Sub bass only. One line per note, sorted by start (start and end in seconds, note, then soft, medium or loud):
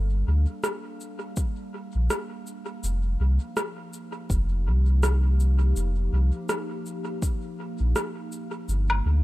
0.00 0.24 G1 loud
0.28 0.46 D2 medium
1.95 2.09 A#1 medium
2.83 3.16 F1 loud
3.20 3.39 C2 medium
4.30 4.68 F1 loud
4.67 5.73 C2 loud
5.76 6.09 F1 loud
6.13 6.31 C2 medium
7.80 7.94 A#1 medium
8.68 9.02 G1 loud
9.05 9.24 D2 medium